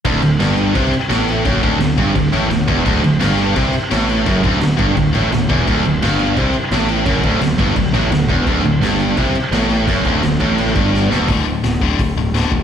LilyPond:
<<
  \new Staff \with { instrumentName = "Distorted electric guitar" } { \clef bass \time 4/4 \key d \mixolydian \tempo 4 = 171 d,8 d,8 g,4 c8 r8 a,4 | fis,8 d,8 d,8 g,8 d,8 a,8 d,8 e,8 | d,8 d,8 g,4 c8 r8 a,4 | fis,8 d,8 d,8 g,8 d,8 a,8 d,8 e,8 |
d,8 d,8 g,4 c8 r8 a,4 | fis,8 d,8 d,8 g,8 d,8 a,8 d,8 e,8 | d,8 d,8 g,4 c8 r8 a,4 | fis,8 d,8 d,8 a,4 g,4 d,8 |
<d, a, d>8 <d, a,>8 <d, a,>8 <d, a, d>8 <d, a,>8 <d, a,>8 <d, a, d>8 <d, a,>8 | }
  \new Staff \with { instrumentName = "Distorted electric guitar" } { \clef bass \time 4/4 \key d \mixolydian d,8 d,8 g,4 c8 r8 a,4 | fis,8 d,8 d,8 g,8 d,8 a,8 d,8 e,8 | d,8 d,8 g,4 c8 r8 a,4 | fis,8 d,8 d,8 g,8 d,8 a,8 d,8 e,8 |
d,8 d,8 g,4 c8 r8 a,4 | fis,8 d,8 d,8 g,8 d,8 a,8 d,8 e,8 | d,8 d,8 g,4 c8 r8 a,4 | fis,8 d,8 d,8 a,4 g,4 d,8 |
r1 | }
  \new Staff \with { instrumentName = "Picked electric bass" } { \clef bass \time 4/4 \key d \mixolydian d,,8 d,,8 g,,4 c,8 r8 a,,4 | fis,,8 d,,8 d,,8 g,,8 d,,8 a,,8 d,,8 e,,8 | d,,8 d,,8 g,,4 c,8 r8 a,,4 | fis,,8 d,,8 d,,8 g,,8 d,,8 a,,8 d,,8 e,,8 |
d,,8 d,,8 g,,4 c,8 r8 a,,4 | fis,,8 d,,8 d,,8 g,,8 d,,8 a,,8 d,,8 e,,8 | d,,8 d,,8 g,,4 c,8 r8 a,,4 | fis,,8 d,,8 d,,8 a,,4 g,,4 d,,8 |
d,,4 d,,8 d,,8 d,,8 d,,8 d,,8 d,,8 | }
  \new DrumStaff \with { instrumentName = "Drums" } \drummode { \time 4/4 <cymc bd>8 cymc8 <cymc sn>8 cymc8 <cymc bd>8 cymc8 <cymc sn>8 cymc8 | <cymc bd>8 <cymc bd>8 <cymc sn>8 <cymc bd>8 <cymc bd>8 cymc8 <cymc sn>8 <cymc bd>8 | <cymc bd>8 cymc8 <cymc sn>8 cymc8 <cymc bd>8 cymc8 <cymc sn>8 cymc8 | <cymc bd>8 <cymc bd>8 <cymc sn>8 <cymc bd>8 <cymc bd>8 cymc8 <cymc sn>8 <cymc bd>8 |
<cymc bd>8 cymc8 <cymc sn>8 cymc8 <cymc bd>8 cymc8 <cymc sn>8 cymc8 | <cymc bd>8 <cymc bd>8 <cymc sn>8 <cymc bd>8 <cymc bd>8 cymc8 <cymc sn>8 <cymc bd>8 | <cymc bd>8 cymc8 <cymc sn>8 cymc8 <cymc bd>8 cymc8 <cymc sn>8 cymc8 | <cymc bd>8 <cymc bd>8 <cymc sn>8 <cymc bd>8 cymc8 <cymc bd>8 sn8 sn8 |
<hho bd>4 <hho sn>8 bd8 <hho bd>4 <hho sn>8 bd8 | }
>>